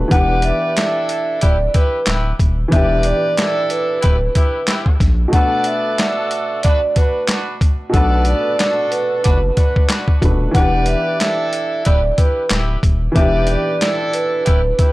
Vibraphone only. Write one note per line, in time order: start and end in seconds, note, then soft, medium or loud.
0.11 0.41 F#5 loud
0.44 1.38 E5 medium
1.42 1.71 D5 medium
1.75 2.04 B4 medium
2.72 3.02 E5 loud
3.06 3.67 D5 medium
3.70 4.64 B4 medium
5.33 5.63 F#5 loud
5.66 6.60 E5 medium
6.63 6.93 D5 medium
6.96 7.25 B4 medium
7.94 8.23 F#5 loud
8.27 8.88 D5 medium
8.91 9.85 B4 medium
10.54 10.84 F#5 loud
10.87 11.81 E5 medium
11.85 12.15 D5 medium
12.18 12.47 B4 medium
13.16 13.45 E5 loud
13.49 14.10 D5 medium
14.14 14.93 B4 medium